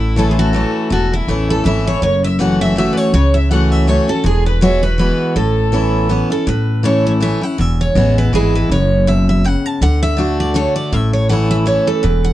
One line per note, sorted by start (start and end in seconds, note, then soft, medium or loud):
0.00 0.63 A1 medium
0.00 0.51 A2 medium
0.00 0.14 E4 medium
0.00 0.18 E4 medium
0.16 0.52 E3 medium
0.16 0.53 A3 medium
0.16 0.53 C#4 loud
0.16 0.54 E4 loud
0.16 0.29 A4 medium
0.16 0.30 A4 medium
0.29 0.38 F4 medium
0.29 0.37 G#4 medium
0.37 0.88 F#4 medium
0.37 0.87 A4 medium
0.53 0.89 E3 medium
0.53 0.90 A3 medium
0.53 0.90 C#4 medium
0.53 0.90 E4 loud
0.90 1.19 E1 medium
0.90 1.62 E2 loud
0.90 1.13 F#4 medium
0.90 1.10 A4 medium
1.13 1.47 E4 medium
1.28 1.59 A1 medium
1.28 1.63 E3 medium
1.28 1.64 A3 medium
1.28 1.65 C#4 medium
1.28 1.65 E4 loud
1.50 1.64 A4 medium
1.50 1.65 A4 loud
1.64 1.97 G#1 medium
1.64 2.00 E3 medium
1.64 2.01 A3 medium
1.64 2.01 C#4 medium
1.64 2.02 E4 medium
1.64 1.84 E5 medium
1.64 1.85 E5 loud
1.87 2.02 C#5 medium
1.87 2.02 C#5 loud
2.02 2.86 F#1 medium
2.02 2.73 F#2 medium
2.02 2.24 C#5 loud
2.02 2.23 C#5 medium
2.24 2.40 E5 medium
2.24 2.41 E5 medium
2.39 2.75 E3 medium
2.39 2.75 A3 medium
2.39 2.75 C#4 medium
2.39 2.76 F#4 medium
2.39 2.60 F#5 medium
2.39 2.61 F#5 loud
2.61 2.76 E5 loud
2.61 2.77 E5 medium
2.76 3.12 E3 medium
2.76 3.12 A3 medium
2.76 3.13 C#4 medium
2.76 3.13 F#4 medium
2.76 2.92 E5 medium
2.76 2.92 E5 loud
2.93 2.97 B4 medium
2.93 2.99 D5 medium
2.97 3.12 C#5 loud
2.97 3.14 C#5 medium
3.13 3.97 C#2 medium
3.13 3.85 C#3 medium
3.13 3.35 C#5 loud
3.13 3.33 C#5 medium
3.34 3.51 E5 medium
3.34 3.50 E5 medium
3.51 3.86 E3 medium
3.51 3.87 A3 medium
3.51 3.87 C#4 medium
3.51 3.88 F#4 medium
3.51 3.74 F#5 medium
3.51 3.72 F#5 loud
3.72 3.89 E5 loud
3.72 3.90 E5 medium
3.87 4.08 E3 medium
3.87 4.08 A3 medium
3.87 4.08 C#4 medium
3.87 4.07 F#4 medium
3.87 4.10 C#5 loud
3.87 4.09 C#5 medium
4.08 4.25 C#4 medium
4.08 4.24 F#4 medium
4.08 4.24 A4 medium
4.08 4.25 A4 medium
4.24 5.09 E1 medium
4.24 4.95 E2 medium
4.24 4.45 G#4 loud
4.24 4.46 G#4 medium
4.46 4.61 B4 medium
4.46 4.62 B4 medium
4.61 4.82 E3 medium
4.61 4.82 G#3 medium
4.61 4.82 B3 loud
4.61 4.81 F#4 medium
4.61 4.81 C#5 medium
4.61 4.82 E5 medium
4.83 4.99 B3 medium
4.83 4.99 F#4 medium
4.83 4.98 B4 medium
4.83 4.99 B4 medium
4.98 5.34 E3 medium
4.98 5.35 G#3 medium
4.98 5.35 B3 medium
4.98 5.35 F#4 medium
4.98 5.36 B4 medium
4.98 5.34 B4 medium
5.36 6.20 A1 medium
5.36 6.07 A2 medium
5.36 6.07 A4 medium
5.72 6.08 E3 medium
5.72 6.08 B3 medium
5.72 6.09 C#4 medium
5.72 6.09 E4 medium
6.09 6.30 E3 medium
6.09 6.30 B3 medium
6.09 6.30 C#4 medium
6.09 6.29 E4 medium
6.30 6.48 C#4 soft
6.30 6.46 E4 medium
6.30 6.48 A4 medium
6.47 7.31 A1 medium
6.47 7.18 A2 loud
6.47 6.86 B4 medium
6.83 7.19 E3 medium
6.83 7.20 A3 medium
6.83 7.20 C#4 loud
6.83 7.21 E4 loud
6.83 7.05 C#5 medium
7.07 7.12 C#5 medium
7.20 7.41 E3 medium
7.20 7.42 A3 medium
7.20 7.42 C#4 medium
7.20 7.40 E4 medium
7.20 7.43 E5 loud
7.41 7.59 C#4 medium
7.41 7.58 E4 medium
7.41 7.61 F#5 loud
7.58 7.87 E1 loud
7.58 8.30 E2 medium
7.58 7.81 E5 loud
7.81 8.18 C#5 medium
7.95 8.27 A1 medium
7.95 8.31 E3 medium
7.95 8.32 G#3 loud
7.95 8.32 B3 medium
7.95 8.32 E4 loud
8.18 8.33 B4 medium
8.33 8.65 G#1 medium
8.33 8.69 E3 medium
8.33 8.69 G#3 loud
8.33 8.69 B3 medium
8.33 8.70 E4 loud
8.33 8.53 G#4 medium
8.55 8.70 B4 loud
8.69 9.54 F#1 medium
8.69 9.42 F#2 medium
8.69 9.09 C#5 loud
9.07 9.43 B2 medium
9.07 9.28 E5 medium
9.29 9.45 E5 loud
9.44 9.80 C#3 medium
9.44 9.66 F#5 loud
9.66 9.82 A5 loud
9.81 10.65 D2 loud
9.81 10.15 D3 loud
9.81 10.01 F#5 loud
10.03 10.40 E5 medium
10.17 10.53 D3 medium
10.17 10.54 A3 loud
10.17 10.54 D4 medium
10.17 10.54 F#4 medium
10.40 10.55 D5 medium
10.54 10.90 D3 medium
10.54 10.91 A3 medium
10.54 10.91 D4 medium
10.54 10.92 F#4 medium
10.54 10.75 C#5 loud
10.76 10.93 D5 medium
10.92 11.76 A1 medium
10.92 11.64 A2 medium
10.92 11.13 E5 loud
11.13 11.29 C#5 medium
11.29 11.64 E3 medium
11.29 11.65 A3 medium
11.29 11.66 C#4 medium
11.29 11.66 E4 loud
11.29 11.50 F#5 medium
11.51 11.56 E5 medium
11.66 12.02 E3 medium
11.66 12.02 A3 medium
11.66 12.02 C#4 medium
11.66 12.03 E4 medium
11.66 11.86 C#5 loud
11.87 12.04 A4 medium
12.03 12.33 E1 medium
12.03 12.33 E2 loud
12.03 12.25 B4 loud
12.24 12.33 F#5 medium